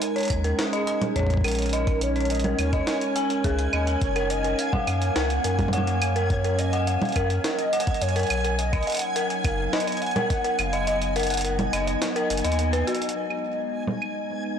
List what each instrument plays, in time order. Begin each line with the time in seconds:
Already playing: ambient pad G#3 C#4 D#4 C#5 D#5, soft synth lead A#4, synth texture G#5
0.02 closed hi-hat
0.16 synth bell C#5, closed hi-hat
0.18 closed hi-hat
0.21 closed hi-hat
0.23 closed hi-hat
0.25 closed hi-hat
0.28 closed hi-hat
0.30 sub bass D#2, kick, closed hi-hat, claves
0.36 ambient pad A#4
0.44 synth bell A#4, closed hi-hat
0.59 soft synth lead G#4, snare, closed hi-hat
0.73 synth bell D#5, closed hi-hat
0.87 synth bell D#5, closed hi-hat
1.02 closed hi-hat, low conga
1.16 synth bell C#5, kick, closed hi-hat
1.19 kick
1.23 kick
1.27 kick, closed hi-hat
1.30 kick
1.34 kick
1.37 kick
1.41 sub bass A#1, synth bell A#4, kick, closed hi-hat, claves
1.48 closed hi-hat
1.51 closed hi-hat
1.55 closed hi-hat
1.59 closed hi-hat
1.62 closed hi-hat
1.66 closed hi-hat
1.69 closed hi-hat
1.73 soft synth lead A#4, synth bell D#5, closed hi-hat
1.87 synth bell D#5, kick, closed hi-hat
2.01 soft synth lead C#5, closed hi-hat
2.16 synth bell C#5, closed hi-hat
2.21 closed hi-hat
2.25 closed hi-hat
2.30 soft synth lead D#5, closed hi-hat
2.35 closed hi-hat
2.40 closed hi-hat
2.44 synth bell A#4, closed hi-hat, low conga
2.59 sub bass D#2, soft synth lead C#5, closed hi-hat, claves
2.73 synth bell D#5, kick, closed hi-hat
2.87 synth bell D#5, snare, closed hi-hat
3.01 closed hi-hat
3.16 synth bell G#5, closed hi-hat
3.30 closed hi-hat
3.44 sub bass C#2, synth bell G#4, kick, closed hi-hat
3.59 closed hi-hat
3.73 sub bass D#2, synth bell D#5, claves
3.87 synth bell G#5, closed hi-hat
4.01 sub bass F#1, ambient pad F#3, soft synth lead C#5, kick, closed hi-hat
4.16 synth bell A#4, closed hi-hat, claves
4.30 soft synth lead D#5, closed hi-hat
4.44 ambient pad A#3, synth bell A#4, closed hi-hat
4.59 soft synth lead F5, closed hi-hat
4.73 synth bell F#5, kick, low conga
4.87 sub bass F#2, synth bell F#5, closed hi-hat, claves
5.02 closed hi-hat
5.16 sub bass C#2, synth bell A#4, soft synth lead F#5, snare, closed hi-hat
5.30 closed hi-hat
5.44 sub bass F#2, synth bell A#4, closed hi-hat
5.59 kick, closed hi-hat, low conga
5.68 low conga
5.73 soft synth lead C#5, synth bell F#5, closed hi-hat
5.78 low conga
5.87 synth bell F#5, closed hi-hat
6.02 closed hi-hat, claves
6.16 synth bell A#4, closed hi-hat
6.30 soft synth lead C#5, kick, closed hi-hat
6.44 synth bell A#4, closed hi-hat
6.58 soft synth lead D#5, closed hi-hat
6.73 synth bell F#5, closed hi-hat
6.87 soft synth lead F5, synth bell F#5, closed hi-hat
7.02 closed hi-hat, low conga
7.05 closed hi-hat
7.09 closed hi-hat
7.12 closed hi-hat
7.16 sub bass F#2, synth bell A#4, kick, closed hi-hat, claves
7.30 closed hi-hat
7.44 synth bell A#4, soft synth lead D#5, snare, closed hi-hat
7.59 closed hi-hat
7.73 synth bell F#5, closed hi-hat
7.80 closed hi-hat
7.87 synth bell F#5, kick, closed hi-hat
7.94 closed hi-hat
8.01 sub bass F#2, soft synth lead C#5, closed hi-hat
8.09 closed hi-hat
8.16 synth bell A#4, closed hi-hat
8.19 closed hi-hat
8.23 closed hi-hat
8.27 sub bass B1, closed hi-hat
8.30 closed hi-hat, claves
8.34 closed hi-hat
8.37 closed hi-hat
8.41 closed hi-hat
8.44 synth bell A#4, closed hi-hat
8.58 soft synth lead D#5, closed hi-hat
8.73 synth bell D#5, kick, closed hi-hat, claves
8.77 ambient pad D#4
8.83 closed hi-hat
8.87 synth bell D#5, soft synth lead F#5, closed hi-hat
8.90 closed hi-hat
8.92 closed hi-hat
8.95 closed hi-hat
8.97 closed hi-hat
8.99 closed hi-hat
9.02 closed hi-hat
9.16 ambient pad B3, synth bell A#4, closed hi-hat
9.30 closed hi-hat
9.44 sub bass F#1, synth bell A#4, soft synth lead F5, kick, closed hi-hat, claves
9.73 synth bell D#5, soft synth lead D#5, snare
9.80 closed hi-hat
9.87 synth bell D#5, closed hi-hat
9.92 closed hi-hat
9.97 closed hi-hat
10.02 soft synth lead F#5, closed hi-hat
10.06 closed hi-hat
10.11 closed hi-hat
10.16 synth bell A#4, ambient pad D#5, closed hi-hat, low conga
10.30 kick, closed hi-hat
10.44 synth bell A#4, closed hi-hat
10.59 sub bass F#1, soft synth lead F5, closed hi-hat, claves
10.73 synth bell D#5, closed hi-hat
10.87 soft synth lead D#5, synth bell D#5, closed hi-hat
11.02 closed hi-hat
11.16 synth bell A#4, soft synth lead F#5, closed hi-hat
11.20 closed hi-hat
11.23 closed hi-hat
11.27 closed hi-hat
11.30 closed hi-hat
11.33 closed hi-hat
11.35 closed hi-hat
11.37 closed hi-hat
11.40 closed hi-hat
11.42 synth bell A#4, closed hi-hat
11.45 closed hi-hat
11.59 closed hi-hat, low conga
11.73 sub bass F#1, soft synth lead D#5, synth bell D#5, closed hi-hat, claves
11.87 synth bell D#5, closed hi-hat
12.02 snare, closed hi-hat
12.16 synth bell A#4, closed hi-hat
12.30 sub bass F#1, closed hi-hat
12.37 closed hi-hat
12.44 sub bass D#2, synth bell D#5, closed hi-hat
12.52 closed hi-hat
12.59 closed hi-hat
12.73 synth bell B4, closed hi-hat
12.87 synth bell F#4, closed hi-hat
12.95 closed hi-hat
13.02 closed hi-hat
13.09 closed hi-hat
13.16 ambient pad G#3, synth texture G#5
13.30 claves
13.87 ambient pad B4, low conga
14.02 claves